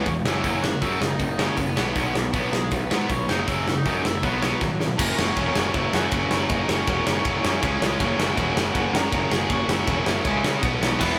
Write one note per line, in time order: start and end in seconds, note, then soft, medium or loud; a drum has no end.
0.06 0.21 E1 medium
0.06 0.24 E2 medium
0.06 0.24 B2 medium
0.06 0.24 E3 medium
0.06 0.24 G#3 medium
0.06 0.13 C#4 medium
0.06 0.13 C#5 medium
0.06 kick loud
0.06 open hi-hat medium
0.25 0.40 F#1 medium
0.25 0.43 F#2 medium
0.25 0.44 C#3 medium
0.25 0.62 E3 medium
0.25 0.44 F#3 medium
0.25 0.63 E4 medium
0.25 snare loud
0.44 0.73 F#1 medium
0.44 0.63 F#2 loud
0.44 0.63 C#3 medium
0.44 0.63 F#3 loud
0.44 kick loud
0.44 open hi-hat medium
0.63 0.81 F#2 medium
0.63 0.81 C#3 medium
0.63 0.81 F#3 medium
0.63 0.82 F#4 medium
0.63 snare loud
0.82 0.96 F#2 medium
0.82 1.01 F#2 medium
0.82 1.01 C#3 medium
0.82 1.00 E3 medium
0.82 1.01 F#3 medium
0.82 1.00 E4 medium
0.82 kick loud
0.82 open hi-hat medium
1.00 1.15 F#1 medium
1.00 1.19 F#2 medium
1.00 1.19 C#3 medium
1.00 1.50 D#4 loud
1.00 1.45 D#5 medium
1.00 snare loud
1.19 1.48 F#1 medium
1.19 1.37 F#2 medium
1.19 1.38 C#3 medium
1.19 kick loud
1.19 open hi-hat medium
1.39 1.57 F#2 medium
1.39 1.57 C#3 medium
1.39 1.58 F#3 loud
1.39 snare loud
1.47 1.58 C#4 medium
1.47 1.57 C#5 medium
1.57 1.72 F#1 medium
1.57 1.75 F#2 medium
1.57 1.76 C#3 medium
1.57 1.84 B3 medium
1.57 1.85 B4 medium
1.57 kick loud
1.57 open hi-hat medium
1.77 1.91 B1 medium
1.77 1.96 B2 medium
1.77 1.96 F#3 medium
1.77 1.96 B3 medium
1.77 snare loud
1.95 2.10 B1 loud
1.95 2.15 B2 medium
1.95 2.15 F#3 medium
1.95 2.15 B3 loud
1.95 kick loud
1.95 open hi-hat medium
2.15 2.29 B1 medium
2.15 2.33 B2 medium
2.15 2.33 F#3 medium
2.15 snare loud
2.33 2.48 B1 medium
2.33 2.53 B2 medium
2.33 2.53 F#3 medium
2.33 2.53 B3 medium
2.33 kick loud
2.33 open hi-hat medium
2.53 2.67 B1 medium
2.53 2.71 B2 medium
2.53 2.71 F#3 medium
2.53 2.74 G#3 medium
2.53 2.71 G#4 medium
2.53 snare loud
2.71 2.86 B1 medium
2.71 2.89 B2 medium
2.71 2.90 F#3 medium
2.71 3.11 B3 medium
2.71 3.07 B4 medium
2.71 kick loud
2.71 open hi-hat soft
2.90 3.06 G#2 medium
2.90 3.08 B2 medium
2.90 3.09 F#3 medium
2.90 3.09 B3 loud
2.90 snare loud
3.09 3.24 B1 medium
3.09 3.27 B2 medium
3.09 3.27 F#3 medium
3.09 3.29 C#4 medium
3.09 3.27 C#5 medium
3.09 kick loud
3.09 open hi-hat medium
3.28 3.44 F#1 medium
3.28 3.46 F#2 medium
3.28 3.47 C#3 medium
3.28 3.47 F#3 medium
3.28 3.48 D#4 loud
3.28 3.46 D#5 medium
3.28 snare loud
3.47 3.76 F#1 medium
3.47 3.65 F#2 medium
3.47 3.66 C#3 medium
3.47 3.75 E3 medium
3.47 3.66 F#3 medium
3.47 3.77 E4 medium
3.47 kick loud
3.47 open hi-hat medium
3.67 3.84 F#2 medium
3.67 3.84 C#3 medium
3.67 snare medium
3.77 4.05 D#4 loud
3.77 4.04 D#5 medium
3.85 4.02 F#2 medium
3.85 4.00 F#2 medium
3.85 4.03 C#3 medium
3.85 4.04 F#3 medium
3.85 kick loud
3.85 open hi-hat medium
4.04 4.20 F#1 medium
4.04 4.21 F#2 medium
4.04 4.21 C#3 medium
4.04 4.23 E3 medium
4.04 4.24 E4 loud
4.04 snare loud
4.22 4.52 B1 medium
4.22 4.41 B2 loud
4.22 4.41 F#3 loud
4.22 4.77 F#3 medium
4.22 4.41 B3 loud
4.22 4.77 F#4 medium
4.22 kick loud
4.22 open hi-hat medium
4.42 4.60 B2 medium
4.42 4.60 F#3 medium
4.42 4.61 B3 loud
4.42 snare loud
4.61 4.89 G#1 loud
4.61 4.78 B2 medium
4.61 4.78 F#3 medium
4.61 kick loud
4.61 snare medium
4.80 4.97 B2 medium
4.80 4.97 F#3 medium
4.80 snare medium
4.97 5.12 F#1 loud
4.97 5.16 F#2 loud
4.97 5.16 C#3 loud
4.97 5.17 F#3 loud
4.97 5.18 A#3 loud
4.97 5.17 A#3 medium
4.97 5.18 C#4 loud
4.97 5.19 F#4 loud
4.97 kick loud
4.97 crash loud
5.01 5.20 A#4 medium
5.17 5.31 F#1 medium
5.17 5.35 F#2 medium
5.17 5.36 C#3 medium
5.17 5.36 F#3 medium
5.17 5.36 A#3 medium
5.17 5.38 C#4 loud
5.17 5.72 C#4 medium
5.17 5.37 F#4 medium
5.17 5.75 C#5 medium
5.17 snare loud
5.36 5.49 E1 medium
5.36 5.53 F#2 medium
5.36 5.54 C#3 medium
5.36 5.54 F#3 medium
5.36 5.54 A#3 medium
5.36 5.55 C#4 loud
5.36 5.55 F#4 medium
5.36 kick loud
5.36 ride medium
5.54 5.69 F#1 medium
5.54 5.72 F#2 medium
5.54 5.72 C#3 loud
5.54 5.73 F#3 loud
5.54 5.73 A#3 medium
5.54 5.74 C#4 medium
5.54 5.74 F#4 medium
5.54 snare loud
5.73 5.87 F#1 medium
5.73 5.92 F#2 loud
5.73 5.92 C#3 loud
5.73 5.93 F#3 loud
5.73 5.93 A#3 loud
5.73 5.94 C#4 loud
5.73 5.92 E4 medium
5.73 5.94 F#4 loud
5.73 5.95 E5 loud
5.73 kick loud
5.73 ride medium
5.93 6.10 F#2 medium
5.93 6.06 F#2 loud
5.93 6.11 C#3 medium
5.93 6.12 F#3 medium
5.93 6.12 A#3 loud
5.93 6.13 C#4 medium
5.93 6.29 F#4 medium
5.93 6.12 F#4 medium
5.93 6.31 F#5 medium
5.93 snare loud
6.11 6.25 F#1 loud
6.11 6.29 F#2 medium
6.11 6.30 C#3 medium
6.11 6.31 F#3 loud
6.11 6.31 A#3 medium
6.11 6.32 C#4 loud
6.11 6.32 F#4 loud
6.11 kick loud
6.11 ride medium
6.31 6.44 F#1 medium
6.31 6.48 F#2 medium
6.31 6.49 C#3 medium
6.31 6.50 F#3 medium
6.31 6.50 A#3 medium
6.31 6.51 C#4 medium
6.31 6.49 E4 medium
6.31 6.51 F#4 medium
6.31 6.50 E5 loud
6.31 snare loud
6.49 6.62 F#1 loud
6.49 6.67 F#2 loud
6.49 6.68 C#3 loud
6.49 6.68 F#3 loud
6.49 6.68 A#3 loud
6.49 6.69 C#4 loud
6.49 6.67 D#4 medium
6.49 6.69 F#4 loud
6.49 6.69 D#5 loud
6.49 kick loud
6.49 ride medium
6.68 6.82 F#1 loud
6.68 6.86 F#2 medium
6.68 6.86 C#3 medium
6.68 6.87 F#3 medium
6.68 6.87 A#3 medium
6.68 6.88 C#4 medium
6.68 7.04 C#4 medium
6.68 6.88 F#4 loud
6.68 7.05 C#5 medium
6.68 snare loud
6.87 7.00 E1 loud
6.87 7.06 F#2 medium
6.87 7.06 C#3 medium
6.87 7.06 F#3 medium
6.87 7.07 A#3 medium
6.87 7.08 C#4 medium
6.87 7.08 F#4 medium
6.87 kick loud
6.87 ride medium
7.06 7.20 F#1 medium
7.06 7.24 F#2 medium
7.06 7.25 C#3 medium
7.06 7.25 F#3 medium
7.06 7.25 A#3 loud
7.06 7.59 C#4 medium
7.06 7.27 C#4 loud
7.06 7.26 F#4 loud
7.06 7.58 C#5 medium
7.06 snare loud
7.25 7.38 F#1 medium
7.25 7.43 F#2 loud
7.25 7.43 C#3 loud
7.25 7.43 F#3 loud
7.25 7.44 A#3 loud
7.25 7.45 C#4 loud
7.25 7.44 F#4 loud
7.25 kick loud
7.25 ride medium
7.44 7.61 F#2 medium
7.44 7.57 F#2 loud
7.44 7.61 C#3 medium
7.44 7.62 F#3 loud
7.44 7.62 A#3 medium
7.44 7.63 C#4 medium
7.44 7.62 F#4 medium
7.44 snare loud
7.62 7.75 C#2 loud
7.62 7.80 C#3 loud
7.62 7.80 G#3 loud
7.62 7.82 C#4 loud
7.62 7.81 G#4 loud
7.62 kick loud
7.62 ride medium
7.81 7.95 C#2 medium
7.81 7.99 C#3 medium
7.81 7.99 G#3 medium
7.81 8.01 C#4 medium
7.81 7.99 G#4 medium
7.81 snare loud
8.00 8.13 F#1 loud
8.00 8.17 F#2 loud
8.00 8.18 C#3 loud
8.00 8.18 F#3 loud
8.00 8.19 A#3 loud
8.00 8.18 C#4 medium
8.00 8.20 C#4 loud
8.00 8.19 F#4 loud
8.00 8.21 C#5 medium
8.00 kick loud
8.00 ride medium
8.18 8.32 F#1 medium
8.18 8.35 F#2 medium
8.18 8.36 C#3 medium
8.18 8.36 F#3 medium
8.18 8.37 A#3 medium
8.18 8.37 C#4 loud
8.18 8.72 E4 medium
8.18 8.38 F#4 loud
8.18 8.76 E5 loud
8.18 snare loud
8.37 8.50 E1 loud
8.37 8.55 F#2 medium
8.37 8.55 C#3 medium
8.37 8.56 F#3 medium
8.37 8.56 A#3 medium
8.37 8.57 C#4 medium
8.37 8.57 F#4 medium
8.37 kick loud
8.37 ride medium
8.56 8.69 F#1 medium
8.56 8.72 F#2 loud
8.56 8.73 C#3 loud
8.56 8.73 F#3 loud
8.56 8.74 A#3 loud
8.56 8.74 C#4 loud
8.56 8.74 F#4 loud
8.56 snare loud
8.74 8.88 F#1 medium
8.74 8.92 F#2 loud
8.74 8.92 C#3 loud
8.74 8.93 F#3 loud
8.74 8.93 A#3 loud
8.74 8.93 C#4 loud
8.74 8.94 F#4 loud
8.74 8.93 F#4 medium
8.74 8.95 F#5 loud
8.74 kick loud
8.74 ride medium
8.93 9.11 F#2 medium
8.93 9.06 F#2 loud
8.93 9.11 C#3 medium
8.93 9.12 F#3 medium
8.93 9.12 A#3 medium
8.93 9.13 C#4 medium
8.93 9.13 F#4 medium
8.93 9.29 A#4 medium
8.93 9.33 A#5 loud
8.93 snare loud
9.12 9.25 F#1 loud
9.12 9.30 F#2 loud
9.12 9.31 C#3 loud
9.12 9.32 F#3 medium
9.12 9.32 A#3 medium
9.12 9.32 C#4 medium
9.12 9.33 F#4 loud
9.12 kick loud
9.12 ride medium
9.32 9.44 F#1 medium
9.32 9.49 F#2 medium
9.32 9.50 C#3 medium
9.32 9.50 F#3 medium
9.32 9.50 A#3 medium
9.32 9.51 C#4 medium
9.32 9.51 F#4 medium
9.32 9.49 G#4 medium
9.32 9.51 G#5 medium
9.32 snare loud
9.50 9.63 F#1 loud
9.50 9.68 F#2 loud
9.50 9.69 C#3 loud
9.50 9.69 F#3 loud
9.50 9.69 A#3 loud
9.50 9.70 C#4 loud
9.50 9.68 F#4 medium
9.50 9.70 F#4 loud
9.50 9.70 F#5 medium
9.50 kick loud
9.50 ride medium
9.68 9.81 F#1 medium
9.68 9.88 F#2 medium
9.68 9.88 C#3 medium
9.68 9.89 F#3 medium
9.68 9.89 A#3 medium
9.68 9.89 C#4 medium
9.68 10.05 E4 medium
9.68 9.90 F#4 loud
9.68 10.05 E5 loud
9.68 snare loud
9.87 10.01 E1 medium
9.87 10.06 F#2 medium
9.87 10.06 C#3 medium
9.87 10.07 F#3 medium
9.87 10.07 A#3 loud
9.87 10.08 C#4 medium
9.87 10.08 F#4 medium
9.87 kick loud
9.87 ride medium
10.06 10.19 F#1 medium
10.06 10.25 F#2 medium
10.06 10.25 C#3 medium
10.06 10.25 F#3 medium
10.06 10.25 A#3 medium
10.06 10.26 C#4 loud
10.06 10.59 E4 medium
10.06 10.26 F#4 loud
10.06 10.59 E5 medium
10.06 snare loud
10.25 10.38 C#2 medium
10.25 10.43 C#3 loud
10.25 10.44 G#3 loud
10.25 10.44 C#4 loud
10.25 10.45 G#4 loud
10.25 kick loud
10.25 ride medium
10.44 10.62 C#3 medium
10.44 10.57 C#3 loud
10.44 10.62 G#3 medium
10.44 10.63 C#4 medium
10.44 10.63 G#4 loud
10.44 snare loud
10.63 10.76 B1 loud
10.63 10.81 B2 medium
10.63 10.82 F#3 medium
10.63 10.83 B3 loud
10.63 10.82 F#4 loud
10.63 kick loud
10.63 ride medium
10.81 10.94 B1 medium
10.81 10.99 B2 medium
10.81 11.00 F#3 medium
10.81 11.00 B3 medium
10.81 11.00 F#4 medium
10.81 snare loud
11.00 11.13 E1 loud
11.00 11.18 E2 medium
11.00 11.18 B2 loud
11.00 11.19 E3 loud
11.00 11.19 G#3 loud
11.00 11.19 B3 loud
11.00 11.19 B3 medium
11.00 11.19 E4 loud
11.00 11.19 B4 medium
11.00 kick loud
11.00 crash loud